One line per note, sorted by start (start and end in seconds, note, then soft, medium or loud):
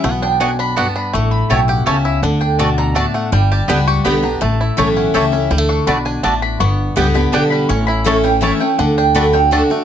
0.04 0.85 B1 loud
0.04 0.73 B2 medium
0.04 0.11 A3 medium
0.04 0.22 F#5 medium
0.11 0.41 B3 medium
0.22 0.39 D4 medium
0.22 0.40 G5 loud
0.40 0.75 F#2 loud
0.40 0.50 B3 medium
0.40 0.58 D4 medium
0.40 0.50 F#4 medium
0.40 0.50 D5 medium
0.40 0.50 F#5 loud
0.40 0.59 G#5 medium
0.59 0.94 D4 medium
0.59 0.76 B5 loud
0.76 1.12 G2 medium
0.76 0.86 B3 medium
0.76 1.14 B3 medium
0.76 0.86 F#4 loud
0.76 0.86 D5 medium
0.76 0.86 F#5 loud
0.76 0.95 A5 loud
0.96 1.14 D4 medium
0.96 1.13 B5 loud
1.13 1.41 A1 medium
1.13 1.84 A2 medium
1.13 1.65 A3 medium
1.13 1.31 C#6 loud
1.31 1.49 B5 loud
1.50 1.81 B1 medium
1.50 1.85 B2 medium
1.50 1.59 A3 medium
1.50 1.59 E4 medium
1.50 2.02 E4 medium
1.50 1.59 C#5 loud
1.50 1.68 G5 medium
1.50 1.59 A5 loud
1.68 2.20 G4 medium
1.68 1.86 F#5 loud
1.86 2.18 C#2 medium
1.86 2.21 C#3 medium
1.86 1.95 A3 medium
1.86 2.23 C#4 medium
1.86 1.96 E4 loud
1.86 1.96 C#5 medium
1.86 2.03 E5 medium
1.86 1.96 A5 loud
2.05 2.23 E4 medium
2.05 2.22 E5 medium
2.22 3.03 D2 loud
2.22 2.93 D3 medium
2.22 2.40 D4 medium
2.22 2.40 F#5 medium
2.41 2.58 D4 medium
2.41 2.58 G5 loud
2.59 2.94 B2 medium
2.59 2.68 A3 medium
2.59 2.95 D4 medium
2.59 2.69 F#4 loud
2.59 2.69 D5 loud
2.59 2.77 A5 medium
2.59 2.69 A5 loud
2.78 3.29 D3 medium
2.78 2.95 A#5 loud
2.95 3.31 A2 medium
2.95 3.05 A3 medium
2.95 3.33 D4 medium
2.95 3.05 F#4 medium
2.95 3.05 D5 loud
2.95 3.05 A5 loud
2.95 3.14 A5 loud
3.14 3.32 A3 medium
3.14 3.32 F#5 medium
3.32 3.59 G1 loud
3.32 4.02 G2 medium
3.32 3.84 G3 medium
3.32 3.50 G5 medium
3.52 3.86 G4 medium
3.52 3.68 A5 loud
3.68 3.99 C#2 loud
3.68 4.04 G3 loud
3.68 3.77 B3 medium
3.68 4.04 B3 loud
3.68 4.20 D4 medium
3.68 3.78 G4 loud
3.68 4.04 G4 loud
3.68 3.78 D5 loud
3.68 3.78 G5 loud
3.68 3.87 B5 medium
3.87 4.38 G4 medium
3.87 4.04 C#6 loud
4.04 4.36 B1 medium
4.04 4.23 D3 medium
4.04 4.23 G3 medium
4.04 4.14 B3 medium
4.04 4.42 B3 medium
4.04 4.23 B3 medium
4.04 4.14 G4 loud
4.04 4.21 G4 medium
4.04 4.14 D5 medium
4.04 4.15 G5 loud
4.04 4.23 B5 loud
4.22 4.42 B3 soft
4.22 4.42 D4 medium
4.22 4.40 G4 medium
4.22 4.41 A#5 medium
4.41 4.69 A1 medium
4.41 5.11 A2 loud
4.41 4.93 A3 medium
4.41 4.93 A5 medium
4.61 5.11 E4 medium
4.77 5.09 B1 medium
4.77 5.12 E3 medium
4.77 4.87 A3 medium
4.77 5.13 A3 loud
4.77 5.13 C#4 loud
4.77 4.87 E4 loud
4.77 5.13 E4 loud
4.77 5.13 G4 medium
4.77 4.87 C#5 loud
4.77 4.87 A5 loud
4.96 5.32 C#4 medium
4.96 5.14 F#5 loud
5.14 5.46 C#2 medium
5.14 5.32 E3 medium
5.14 5.23 A3 medium
5.14 5.32 A3 medium
5.14 5.33 C#4 medium
5.14 5.24 E4 medium
5.14 5.31 E4 medium
5.14 5.51 G4 medium
5.14 5.24 C#5 medium
5.14 5.49 E5 medium
5.14 5.24 A5 medium
5.32 5.51 C#4 medium
5.32 5.51 C#4 soft
5.32 5.50 E4 medium
5.51 5.78 D2 medium
5.51 6.20 D3 medium
5.51 5.58 G3 medium
5.58 5.87 A3 medium
5.69 5.86 D4 medium
5.69 5.86 C#6 loud
5.87 6.18 B1 medium
5.87 6.22 B2 loud
5.87 5.97 A3 medium
5.87 6.04 D4 medium
5.87 5.97 F#4 loud
5.87 5.97 D5 medium
5.87 5.97 A5 loud
5.87 6.05 B5 medium
6.05 6.22 D4 medium
6.05 6.23 G#5 loud
6.23 6.55 A1 medium
6.23 6.59 A2 medium
6.23 6.33 A3 medium
6.23 6.41 D4 medium
6.23 6.33 F#4 loud
6.23 6.33 D5 loud
6.23 6.42 A5 loud
6.23 6.33 A5 loud
6.42 6.60 D4 medium
6.42 6.60 B5 loud
6.60 6.87 G1 medium
6.60 7.30 G2 medium
6.60 6.96 B3 medium
6.60 7.11 C#6 loud
6.96 7.28 C#2 medium
6.96 7.14 D3 loud
6.96 7.15 G3 loud
6.96 7.06 B3 medium
6.96 7.48 B3 medium
6.96 7.15 B3 loud
6.96 7.06 G4 loud
6.96 7.13 G4 loud
6.96 7.06 D5 loud
6.96 7.06 G5 loud
7.14 7.66 D3 medium
7.14 7.32 B3 medium
7.14 7.32 G4 medium
7.14 7.32 B5 loud
7.32 7.64 B1 medium
7.32 7.68 D3 medium
7.32 7.68 G3 medium
7.32 7.42 B3 medium
7.32 7.68 B3 loud
7.32 7.70 D4 medium
7.32 7.43 G4 medium
7.32 7.69 G4 loud
7.32 7.43 D5 medium
7.32 7.43 G5 loud
7.32 7.50 A5 loud
7.50 7.70 G3 medium
7.50 7.69 B5 loud
7.69 8.50 A1 loud
7.69 8.39 A2 medium
7.69 8.05 C#4 medium
7.69 7.86 C#6 loud
7.87 8.39 E4 medium
7.87 8.05 B5 loud
8.04 8.23 E3 loud
8.04 8.24 A3 loud
8.04 8.15 A3 medium
8.04 8.58 C#4 medium
8.04 8.24 C#4 loud
8.04 8.15 E4 medium
8.04 8.22 E4 loud
8.04 8.16 C#5 loud
8.04 8.23 A5 loud
8.04 8.16 A5 loud
8.24 8.76 E3 medium
8.24 8.41 C#4 medium
8.24 8.42 E4 medium
8.24 8.41 G5 loud
8.41 8.60 E3 loud
8.41 8.60 A3 medium
8.41 8.52 A3 medium
8.41 8.60 C#4 medium
8.41 8.79 E4 medium
8.41 8.58 E4 medium
8.41 8.52 E4 medium
8.41 8.52 C#5 loud
8.41 8.60 A5 loud
8.41 8.52 A5 medium
8.60 9.71 A3 medium
8.60 8.79 C#4 medium
8.60 8.78 E4 medium
8.60 8.78 G5 medium
8.78 9.60 D2 loud
8.78 9.13 D3 medium
8.78 8.97 D4 medium
8.78 8.97 F#5 medium
8.98 9.15 D4 medium
8.98 9.15 G5 loud
9.15 9.33 D3 loud
9.15 9.33 A3 loud
9.15 9.25 A3 medium
9.15 9.33 D4 loud
9.15 9.51 D4 medium
9.15 9.25 F#4 loud
9.15 9.32 F#4 loud
9.15 9.25 D5 loud
9.15 9.25 A5 loud
9.15 9.33 B5 loud
9.33 9.84 D3 medium
9.33 9.51 D4 soft
9.33 9.51 F#4 medium
9.33 9.52 G5 loud
9.51 9.70 D3 medium
9.51 9.70 A3 medium
9.51 9.61 A3 medium
9.51 9.70 D4 medium
9.51 9.84 D4 medium
9.51 9.62 F#4 medium
9.51 9.69 F#4 medium
9.51 9.62 D5 medium
9.51 9.64 F#5 loud
9.51 9.62 A5 loud
9.70 9.84 A3 medium
9.70 9.84 D4 medium
9.70 9.84 F#4 medium